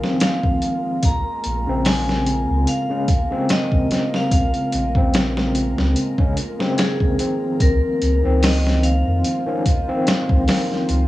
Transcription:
Already playing: ambient pad G#3 F4 G#4, synth texture A#3 A#4, vibraphone F5
0.01 tine electric piano D#3 F3 C4, snare
0.20 vibraphone F5, snare, closed hi-hat
0.43 kick
0.62 closed hi-hat
1.03 sub bass A#1, ambient pad A#4, vibraphone A#5, kick, closed hi-hat
1.44 sub bass A#1, closed hi-hat
1.67 sub bass A#1, tine electric piano C#3 G#3 C4
1.85 vibraphone G#5, snare, open hi-hat
2.09 snare
2.27 closed hi-hat
2.50 sub bass C#2
2.67 vibraphone F5, closed hi-hat
2.90 tine electric piano C#3 G#3 C#4
3.08 kick, closed hi-hat
3.31 tine electric piano C#3 G#3 C4
3.49 vibraphone D#5, snare, closed hi-hat
3.72 sub bass A#1, kick
3.90 tine electric piano C#3 G#3 C4, snare, closed hi-hat
4.14 vibraphone F5, snare
4.31 sub bass A#1, vibraphone F5, kick, closed hi-hat
4.54 closed hi-hat
4.72 sub bass A#1, closed hi-hat
4.94 sub bass A#1, tine electric piano C#3 G#3 C4, kick
5.14 snare, closed hi-hat
5.37 snare
5.55 closed hi-hat
5.78 sub bass C#2, snare
5.96 closed hi-hat
6.18 tine electric piano C#3 G#3 C#4, kick
6.37 closed hi-hat
6.59 tine electric piano C#3 G#3 C4, snare
6.78 vibraphone G#4, snare, closed hi-hat
7.00 kick
7.18 tine electric piano D#3 F3 C4, closed hi-hat
7.60 sub bass C#2, ambient pad G#3 F4 C5, vibraphone A#4, kick, closed hi-hat
8.02 sub bass C#2, closed hi-hat
8.23 sub bass C#2, tine electric piano D#3 F3 C4
8.43 vibraphone D#5, snare, open hi-hat
8.67 snare
8.83 vibraphone F5, closed hi-hat
9.07 sub bass F2
9.24 closed hi-hat
9.46 tine electric piano D#3 F3 C#4
9.66 kick, closed hi-hat
9.88 tine electric piano D#3 F3 C4
10.07 snare, closed hi-hat
10.29 sub bass C#2, kick
10.47 tine electric piano D#3 F3 C4, snare, open hi-hat
10.72 snare
10.89 sub bass C#2, closed hi-hat

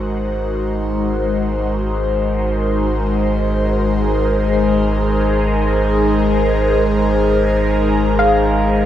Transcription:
Already playing: sub bass G#1, analog synth pad G#3 D#4 F#4 A#4 C5
3.56 analog synth pad G#4
8.19 synth pluck F5

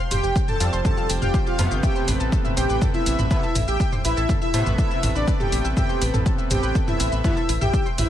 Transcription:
0.11 analog synth bass F1, analog polysynth G4, synth pluck C5 C6, supersaw synth G5, mid tom, open hi-hat, shaker
0.23 analog synth bass F1, synth pluck G4 G5, shaker
0.36 synth pluck G4 G5, kick, shaker
0.48 analog polysynth A4, synth pluck G5 G6, supersaw synth A5, mid tom, shaker
0.60 analog synth bass F2, analog polysynth F3 G3 C4, synth pluck F5 F6, open hi-hat, shaker
0.73 analog synth bass F1, synth pluck C5 C6, shaker
0.85 synth pluck G4 G5, analog polysynth A4, supersaw synth A5, kick, mid tom, shaker
0.97 synth pluck F4 F5, shaker
1.10 analog synth bass F1, synth pluck G5 G6, open hi-hat, shaker
1.22 analog synth bass F1, analog polysynth G4, synth pluck F5 F6, supersaw synth G5, mid tom, shaker
1.34 synth pluck C5 C6, kick, shaker
1.46 analog polysynth F4, synth pluck G4 G5, supersaw synth F5, shaker
1.59 analog synth bass F2, analog polysynth C3 A3 B3, synth pluck F4 F5, mid tom, open hi-hat, shaker
1.71 analog synth bass G1, synth pluck G5 G6, shaker
1.83 analog polysynth G4, synth pluck E5 E6, supersaw synth G5, kick, shaker
1.96 synth pluck C5 C6, shaker
2.08 analog synth bass A1, synth pluck B4 B5, mid tom, open hi-hat, shaker
2.20 analog synth bass A1, synth pluck A4 A5, shaker
2.32 synth pluck A4 A5, kick, shaker
2.45 synth pluck E5 E6, mid tom, shaker
2.57 analog synth bass A1, analog polysynth G4, synth pluck C5 C6, supersaw synth G5, open hi-hat, shaker
2.69 analog synth bass A1, synth pluck B4 B5, shaker
2.82 synth pluck A4 A5, kick, mid tom, shaker
2.94 analog polysynth E4, synth pluck E4 E5, supersaw synth E5, shaker
3.06 analog synth bass A1, synth pluck E5 E6, open hi-hat, shaker
3.19 analog synth bass A1, synth pluck B5, mid tom, shaker
3.31 analog polysynth C3 A3 B3 E4, synth pluck B4 B5, supersaw synth E5, kick, shaker
3.43 synth pluck A4 A5, shaker
3.55 analog synth bass A1, synth pluck E4 E5, mid tom, open hi-hat, shaker
3.68 analog synth bass A1, analog polysynth G4, synth pluck E5 E6, supersaw synth G5, shaker
3.80 synth pluck E5 E6, kick, shaker
3.92 synth pluck C5 C6, mid tom, shaker
4.05 analog synth bass A1, analog polysynth E4, synth pluck B4 B5, supersaw synth E5, open hi-hat, shaker
4.17 analog synth bass A1, synth pluck A4 A5, shaker
4.29 synth pluck A4 A5, kick, mid tom, shaker
4.41 analog polysynth E4, synth pluck E5 E6, supersaw synth E5, shaker
4.54 analog synth bass A2, analog polysynth C3 A3 B3, synth pluck C5 C6, open hi-hat, shaker
4.66 analog synth bass A1, synth pluck B4 B5, mid tom, shaker
4.78 analog polysynth E4, synth pluck A4 A5, supersaw synth E5, kick, shaker
4.91 synth pluck E4 E5, shaker
5.03 analog synth bass A1, synth pluck E5 E6, mid tom, open hi-hat, shaker
5.15 analog synth bass A1, analog polysynth D4, supersaw synth D5, synth pluck B5, shaker
5.28 synth pluck B4 B5, kick, shaker
5.40 analog polysynth G4, synth pluck A4 A5, supersaw synth G5, mid tom, shaker
5.52 analog synth bass A1, synth pluck E4 E5, open hi-hat, shaker
5.64 analog synth bass A1, synth pluck E5 E6, shaker
5.77 analog polysynth G4, synth pluck E5 E6, supersaw synth G5, kick, mid tom, shaker
5.89 synth pluck C5 C6, shaker
6.01 analog synth bass A1, synth pluck B4 B5, open hi-hat, shaker
6.14 analog synth bass A1, synth pluck A4 A5, mid tom, shaker
6.26 synth pluck A4 A5, kick, shaker
6.38 synth pluck E5 E6, shaker
6.51 analog synth bass A1, analog polysynth G4, synth pluck C5 C6, supersaw synth G5, mid tom, open hi-hat, shaker
6.63 analog synth bass A1, synth pluck B4 B5, shaker
6.75 synth pluck A4 A5, kick, shaker
6.88 analog polysynth E4, synth pluck E4 E5, supersaw synth E5, mid tom, shaker
7.00 analog synth bass A1, synth pluck E5 E6, open hi-hat, shaker
7.12 analog synth bass A1, synth pluck B5, shaker
7.24 analog polysynth C3 A3 B3 E4, synth pluck B4 B5, supersaw synth E5, kick, mid tom, shaker
7.37 synth pluck A4 A5, shaker
7.49 analog synth bass A1, synth pluck E4 E5, open hi-hat, shaker
7.61 analog synth bass A1, analog polysynth G4, synth pluck E5 E6, supersaw synth G5, mid tom, shaker
7.73 synth pluck E5 E6, kick, shaker
7.86 synth pluck C5 C6, shaker
7.98 analog synth bass A1, analog polysynth E4, synth pluck B4 B5, supersaw synth E5, mid tom, open hi-hat, shaker

